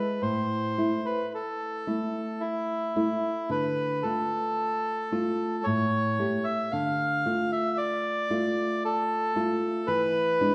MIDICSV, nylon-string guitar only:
0, 0, Header, 1, 2, 480
1, 0, Start_track
1, 0, Tempo, 1111111
1, 97, Time_signature, 3, 2, 24, 8
1, 576, Tempo, 1083032
1, 2496, Tempo, 1050788
1, 4726, End_track
2, 0, Start_track
2, 0, Title_t, "Nylon-string guitar"
2, 0, Program_c, 0, 24
2, 0, Note_on_c, 0, 56, 28
2, 0, Note_on_c, 0, 64, 33
2, 76, Note_off_c, 0, 56, 0
2, 77, Note_off_c, 0, 64, 0
2, 94, Note_on_c, 0, 45, 36
2, 331, Note_off_c, 0, 45, 0
2, 336, Note_on_c, 0, 57, 30
2, 338, Note_on_c, 0, 64, 32
2, 796, Note_off_c, 0, 57, 0
2, 796, Note_off_c, 0, 64, 0
2, 814, Note_on_c, 0, 64, 34
2, 817, Note_on_c, 0, 57, 30
2, 1279, Note_off_c, 0, 64, 0
2, 1280, Note_off_c, 0, 57, 0
2, 1297, Note_on_c, 0, 57, 33
2, 1298, Note_on_c, 0, 64, 33
2, 1521, Note_off_c, 0, 57, 0
2, 1522, Note_off_c, 0, 64, 0
2, 1534, Note_on_c, 0, 50, 41
2, 1769, Note_off_c, 0, 50, 0
2, 1776, Note_on_c, 0, 57, 34
2, 1779, Note_on_c, 0, 65, 34
2, 2237, Note_off_c, 0, 57, 0
2, 2237, Note_off_c, 0, 65, 0
2, 2253, Note_on_c, 0, 57, 31
2, 2256, Note_on_c, 0, 65, 37
2, 2478, Note_off_c, 0, 57, 0
2, 2479, Note_off_c, 0, 65, 0
2, 2494, Note_on_c, 0, 45, 46
2, 2733, Note_off_c, 0, 45, 0
2, 2735, Note_on_c, 0, 57, 35
2, 2738, Note_on_c, 0, 67, 39
2, 2962, Note_off_c, 0, 57, 0
2, 2963, Note_off_c, 0, 67, 0
2, 2982, Note_on_c, 0, 50, 45
2, 3215, Note_off_c, 0, 50, 0
2, 3222, Note_on_c, 0, 57, 36
2, 3225, Note_on_c, 0, 65, 39
2, 3683, Note_off_c, 0, 57, 0
2, 3684, Note_off_c, 0, 65, 0
2, 3701, Note_on_c, 0, 57, 35
2, 3702, Note_on_c, 0, 65, 40
2, 4165, Note_off_c, 0, 57, 0
2, 4165, Note_off_c, 0, 65, 0
2, 4183, Note_on_c, 0, 57, 38
2, 4185, Note_on_c, 0, 65, 41
2, 4401, Note_off_c, 0, 57, 0
2, 4401, Note_off_c, 0, 65, 0
2, 4421, Note_on_c, 0, 52, 48
2, 4650, Note_off_c, 0, 52, 0
2, 4663, Note_on_c, 0, 56, 38
2, 4663, Note_on_c, 0, 62, 45
2, 4726, Note_off_c, 0, 56, 0
2, 4726, Note_off_c, 0, 62, 0
2, 4726, End_track
0, 0, End_of_file